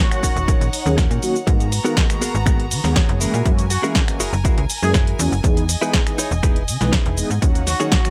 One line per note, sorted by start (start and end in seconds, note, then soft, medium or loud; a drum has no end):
0.00 1.45 D#4 medium
0.00 0.68 F#4 loud
0.00 1.45 C#5 medium
0.00 1.45 F#5 loud
0.11 0.23 D#3 medium
0.11 0.23 F#3 medium
0.11 0.23 A#3 medium
0.11 0.23 C#4 medium
0.11 0.23 F#4 medium
0.11 finger snap medium
0.11 closed hi-hat medium
0.11 shaker soft
0.23 0.34 D#1 soft
0.23 0.36 C#4 medium
0.23 0.36 D#4 medium
0.23 0.36 F#4 medium
0.23 0.37 A#4 medium
0.23 kick medium
0.23 open hi-hat loud
0.23 shaker medium
0.36 0.54 D#1 medium
0.36 closed hi-hat soft
0.36 shaker soft
0.48 0.61 D#3 medium
0.48 0.61 F#3 medium
0.48 0.61 A#3 medium
0.48 0.67 C#4 loud
0.48 0.61 C#4 medium
0.48 0.67 D#4 loud
0.48 0.67 F#4 loud
0.48 0.61 F#4 medium
0.48 0.67 A#4 loud
0.48 kick loud
0.48 closed hi-hat medium
0.48 shaker soft
0.61 0.70 A#1 medium
0.61 closed hi-hat medium
0.61 shaker soft
0.73 open hi-hat loud
0.73 shaker medium
0.86 1.10 D#2 medium
0.86 0.97 D#3 medium
0.86 0.97 F#3 medium
0.86 0.98 A#3 medium
0.86 0.98 C#4 medium
0.86 0.98 G#4 loud
0.86 muted clean electric guitar stroke soft
0.86 shaker soft
0.97 1.22 C#4 medium
0.97 1.23 D#4 medium
0.97 1.23 F#4 medium
0.97 1.23 A#4 loud
0.97 kick loud
0.97 snare loud
0.97 closed hi-hat medium
0.97 shaker soft
1.10 1.19 A#2 medium
1.10 closed hi-hat medium
1.10 shaker soft
1.22 1.35 D#3 medium
1.22 1.35 F#3 medium
1.22 1.35 A#3 medium
1.22 1.35 C#4 medium
1.22 1.35 F#4 loud
1.22 open hi-hat loud
1.22 shaker medium
1.36 shaker soft
1.47 1.80 G#2 loud
1.47 1.67 D#3 loud
1.47 1.67 G#3 medium
1.47 1.67 A#3 medium
1.47 3.19 B3 medium
1.47 1.67 B3 medium
1.47 3.19 F#4 medium
1.47 1.67 F#4 loud
1.47 3.19 A#5 medium
1.47 muted clean electric guitar stroke loud
1.47 kick loud
1.47 closed hi-hat medium
1.47 shaker soft
1.60 muted clean electric guitar stroke soft
1.60 closed hi-hat soft
1.60 shaker soft
1.72 muted clean electric guitar stroke soft
1.72 open hi-hat loud
1.72 shaker medium
1.84 2.04 D#3 loud
1.84 2.04 G#3 medium
1.84 2.04 A#3 medium
1.84 2.03 B3 medium
1.84 2.04 B3 medium
1.84 2.03 F#4 medium
1.84 2.04 F#4 loud
1.84 2.03 G#4 medium
1.84 2.03 A#4 medium
1.84 shaker soft
1.97 kick loud
1.97 snare loud
1.97 closed hi-hat medium
1.97 shaker soft
2.10 2.21 D#3 medium
2.10 2.21 G#3 medium
2.10 2.22 A#3 medium
2.10 2.22 B3 medium
2.10 2.22 F#4 medium
2.10 finger snap medium
2.10 closed hi-hat medium
2.10 shaker soft
2.21 2.34 B3 loud
2.21 2.35 F#4 medium
2.21 2.35 G#4 medium
2.21 2.35 A#4 medium
2.21 open hi-hat loud
2.21 shaker medium
2.35 2.73 G#1 medium
2.35 shaker soft
2.46 2.59 D#3 medium
2.46 2.59 G#3 medium
2.46 2.59 A#3 medium
2.46 2.65 B3 loud
2.46 2.59 B3 medium
2.46 2.65 F#4 loud
2.46 2.60 F#4 medium
2.46 2.65 G#4 loud
2.46 2.65 A#4 loud
2.46 finger snap medium
2.46 kick loud
2.46 closed hi-hat medium
2.46 shaker soft
2.60 closed hi-hat medium
2.71 2.81 D#3 medium
2.71 open hi-hat loud
2.71 shaker medium
2.84 3.02 D#2 medium
2.84 2.96 D#3 medium
2.84 2.96 G#3 medium
2.84 2.96 A#3 medium
2.84 2.96 B3 medium
2.84 2.96 G#4 loud
2.84 muted clean electric guitar stroke soft
2.84 snare soft
2.84 shaker soft
2.96 3.21 B3 loud
2.96 3.20 F#4 medium
2.96 3.20 G#4 medium
2.96 3.21 C#5 loud
2.96 kick loud
2.96 snare loud
2.96 closed hi-hat medium
2.96 shaker soft
3.09 3.27 F#1 loud
3.09 closed hi-hat medium
3.20 3.33 E3 medium
3.20 3.33 G#3 medium
3.20 3.33 A#3 medium
3.20 3.34 C#4 medium
3.20 3.51 E4 loud
3.20 3.34 F#4 loud
3.20 3.51 F#4 medium
3.20 3.51 G#4 medium
3.20 5.42 A#4 medium
3.20 3.51 A#4 loud
3.20 7.38 G#5 medium
3.20 open hi-hat medium
3.20 shaker medium
3.34 3.43 A#2 medium
3.34 shaker soft
3.45 3.78 F#2 loud
3.45 3.65 E3 loud
3.45 3.65 G#3 medium
3.45 3.65 A#3 medium
3.45 3.65 C#4 medium
3.45 3.65 F#4 loud
3.45 kick loud
3.45 closed hi-hat medium
3.45 shaker soft
3.58 muted clean electric guitar stroke soft
3.58 closed hi-hat medium
3.58 shaker soft
3.70 3.86 F#4 loud
3.70 muted clean electric guitar stroke soft
3.70 open hi-hat loud
3.70 shaker medium
3.83 4.02 E3 loud
3.83 4.02 G#3 medium
3.83 4.03 A#3 medium
3.83 4.03 C#4 medium
3.83 4.01 E4 medium
3.83 4.02 F#4 medium
3.83 4.03 F#4 loud
3.83 4.02 G#4 medium
3.83 4.02 A#4 loud
3.83 shaker soft
3.95 kick loud
3.95 snare loud
3.95 closed hi-hat medium
3.95 shaker soft
4.08 4.20 E3 medium
4.08 4.20 G#3 medium
4.08 4.20 A#3 medium
4.08 4.20 C#4 medium
4.08 4.20 F#4 medium
4.08 finger snap medium
4.08 closed hi-hat medium
4.08 shaker soft
4.20 4.30 F#1 soft
4.20 4.33 E4 medium
4.20 4.33 F#4 medium
4.20 4.33 G#4 medium
4.20 4.33 A#4 medium
4.20 open hi-hat medium
4.20 shaker medium
4.33 4.51 F#1 medium
4.33 shaker soft
4.45 4.57 E3 medium
4.45 4.57 G#3 medium
4.45 4.58 A#3 medium
4.45 4.58 C#4 medium
4.45 4.64 E4 loud
4.45 4.64 F#4 loud
4.45 4.58 F#4 medium
4.45 4.64 G#4 loud
4.45 4.64 A#4 loud
4.45 kick loud
4.45 closed hi-hat medium
4.45 shaker soft
4.58 4.67 C#2 medium
4.58 closed hi-hat medium
4.70 open hi-hat loud
4.70 shaker medium
4.82 5.14 F#2 medium
4.82 4.94 E3 medium
4.82 4.94 G#3 medium
4.82 4.94 A#3 medium
4.82 4.94 C#4 medium
4.82 4.90 G#4 medium
4.82 4.94 G#4 loud
4.82 muted clean electric guitar stroke soft
4.82 shaker soft
4.94 5.19 E4 medium
4.94 5.19 F#4 medium
4.94 5.03 G#4 medium
4.94 5.19 G#4 medium
4.94 5.20 A#4 medium
4.94 kick loud
4.94 snare loud
4.94 closed hi-hat medium
4.94 shaker soft
5.07 closed hi-hat medium
5.19 5.29 E2 loud
5.19 5.32 E3 medium
5.19 5.32 G#3 medium
5.19 5.32 A#3 medium
5.19 5.32 C#4 medium
5.19 5.32 F#4 loud
5.19 open hi-hat medium
5.19 shaker medium
5.32 5.41 F#1 medium
5.32 shaker soft
5.44 5.76 E2 loud
5.44 5.63 E3 loud
5.44 5.63 G#3 medium
5.44 5.64 B3 medium
5.44 5.64 D#4 medium
5.44 5.64 G#4 loud
5.44 7.40 D#5 medium
5.44 muted clean electric guitar stroke loud
5.44 kick loud
5.44 closed hi-hat medium
5.44 shaker soft
5.57 muted clean electric guitar stroke soft
5.57 closed hi-hat medium
5.57 shaker soft
5.69 muted clean electric guitar stroke soft
5.69 open hi-hat loud
5.69 shaker medium
5.81 6.01 E3 loud
5.81 6.01 G#3 medium
5.81 6.01 B3 medium
5.81 6.00 D#4 medium
5.81 6.01 D#4 medium
5.81 6.00 E4 medium
5.81 6.00 G#4 medium
5.81 6.01 G#4 loud
5.81 6.00 B4 loud
5.81 shaker soft
5.93 kick loud
5.93 snare loud
5.93 closed hi-hat medium
5.93 shaker soft
6.06 6.18 E3 medium
6.06 6.18 G#3 medium
6.06 6.18 B3 medium
6.06 6.18 D#4 medium
6.06 6.18 G#4 medium
6.06 finger snap medium
6.06 closed hi-hat medium
6.06 shaker soft
6.18 6.31 D#4 loud
6.18 6.31 E4 medium
6.18 6.32 G#4 medium
6.18 6.32 C#5 medium
6.18 open hi-hat loud
6.18 shaker medium
6.31 6.69 E1 medium
6.31 shaker soft
6.43 6.56 E3 medium
6.43 6.56 G#3 medium
6.43 6.56 B3 medium
6.43 6.62 D#4 loud
6.43 6.56 D#4 medium
6.43 6.62 E4 loud
6.43 6.62 G#4 loud
6.43 6.56 G#4 medium
6.43 6.62 B4 loud
6.43 finger snap medium
6.43 kick loud
6.43 closed hi-hat medium
6.43 shaker soft
6.56 closed hi-hat medium
6.68 6.78 C#3 medium
6.68 open hi-hat loud
6.68 shaker medium
6.81 6.99 B1 medium
6.81 6.92 E3 medium
6.81 6.92 G#3 medium
6.81 6.93 B3 medium
6.81 6.93 D#4 medium
6.81 6.93 B4 loud
6.81 muted clean electric guitar stroke soft
6.81 snare soft
6.81 shaker soft
6.92 7.17 D#4 medium
6.92 7.18 E4 medium
6.92 7.18 G#4 medium
6.92 7.18 B4 medium
6.92 kick loud
6.92 snare loud
6.92 closed hi-hat medium
6.92 shaker soft
7.06 7.24 E1 loud
7.06 closed hi-hat medium
7.17 7.30 E3 medium
7.17 7.30 G#3 medium
7.17 7.30 B3 medium
7.17 7.30 D#4 medium
7.17 7.30 G#4 loud
7.17 open hi-hat medium
7.17 shaker medium
7.30 7.39 G#2 medium
7.30 shaker soft
7.42 7.75 D#2 loud
7.42 7.62 D#3 loud
7.42 7.62 F#3 medium
7.42 7.62 A#3 medium
7.42 7.62 C#4 medium
7.42 8.10 D#4 medium
7.42 7.62 F#4 loud
7.42 8.10 C#5 medium
7.42 8.10 F#5 medium
7.42 muted clean electric guitar stroke loud
7.42 kick loud
7.42 closed hi-hat medium
7.42 shaker soft
7.55 muted clean electric guitar stroke soft
7.55 closed hi-hat medium
7.55 shaker soft
7.67 7.82 F#4 medium
7.67 muted clean electric guitar stroke soft
7.67 snare soft
7.67 open hi-hat loud
7.67 shaker medium
7.80 7.99 D#3 loud
7.80 7.99 F#3 medium
7.80 7.99 A#3 medium
7.80 7.99 C#4 medium
7.80 7.98 C#4 medium
7.80 7.98 D#4 medium
7.80 7.98 F#4 medium
7.80 7.99 F#4 loud
7.80 7.99 G#4 loud
7.80 closed hi-hat soft
7.80 shaker soft
7.92 8.10 F#4 loud
7.92 kick loud
7.92 snare loud
7.92 closed hi-hat medium
7.92 shaker soft
8.05 8.10 D#3 medium
8.05 8.10 F#3 medium
8.05 8.10 A#3 medium
8.05 8.10 C#4 medium
8.05 8.10 F#4 medium
8.05 finger snap medium
8.05 closed hi-hat medium
8.05 shaker soft